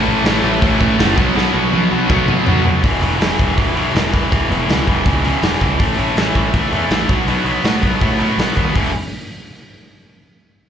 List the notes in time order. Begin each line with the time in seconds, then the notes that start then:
Already playing: A2 E3 A3
0.07 A1
0.24 A1 A2 E3 A3, snare, open hi-hat
0.42 A1 A2 E3 A3
0.61 A1 A2 E3 A3, kick, open hi-hat
0.79 A1 A2 E3 A3, kick
0.98 F#1 A2 E3 A3, snare, open hi-hat
1.16 B1 B2 F#3 B3, kick
1.35 B1 B2 F#3 B3, snare
1.54 B1
1.71 B1 B2 F#3 B3, high tom
1.91 B1 B2 F#3 B3
2.10 B1 B2 F#3 B3, kick, mid tom
2.28 B2 F#3 B3, mid tom
2.46 B1 B2 F#3 B3, floor tom
2.65 B1 B2 F#3 B3, floor tom
2.83 E1 E2 B2 E3, kick, open hi-hat
3.01 E1 E2 B2 E3, open hi-hat
3.19 E1 E2 B2 E3, snare, open hi-hat
3.38 E1 E2 B2 E3, kick, open hi-hat
3.56 E1 E2 B2 E3, kick, open hi-hat
3.75 B1 E2 B2 E3, open hi-hat
3.94 E1 E2 B2 E3, snare, open hi-hat
4.13 E2 B2 E3, kick, open hi-hat
4.31 E1 E2 B2 E3, kick, open hi-hat
4.50 E1 E2 B2 E3, open hi-hat
4.68 C#2 E2 B2 E3, snare, open hi-hat
4.87 E1 E2 B2 E3, kick, open hi-hat
5.06 C#2 E2 B2 E3, kick, open hi-hat
5.24 E2 B2 E3, open hi-hat
5.42 E1 E2 B2 E3, snare, open hi-hat
5.61 C#2 E2 B2 E3, kick, open hi-hat
5.78 A1 A2 E3 A3, kick, open hi-hat
5.98 A1 A2 E3 A3, open hi-hat
6.16 A1 A2 E3 A3, snare, open hi-hat
6.35 A1 A2 E3 A3, kick, open hi-hat
6.53 A1 A2 E3 A3, kick, open hi-hat
6.72 E2 A2 E3 A3, open hi-hat
6.89 A1 A2 E3 A3, snare, open hi-hat
7.08 B1 B2 F#3 B3, kick, open hi-hat
7.27 B1 B2 F#3 B3, open hi-hat
7.45 B1 B2 F#3 B3, open hi-hat
7.64 A2 B2 F#3 B3, snare, open hi-hat
7.82 B1 B2 F#3 B3, kick, open hi-hat
8.01 A2 B2 F#3 B3, kick, open hi-hat
8.19 B2 F#3 B3, open hi-hat
8.38 B1 B2 F#3 B3, snare, open hi-hat
8.56 D#2 B2 F#3 B3, kick, open hi-hat
8.75 E1 E2 B2 E3, kick, open hi-hat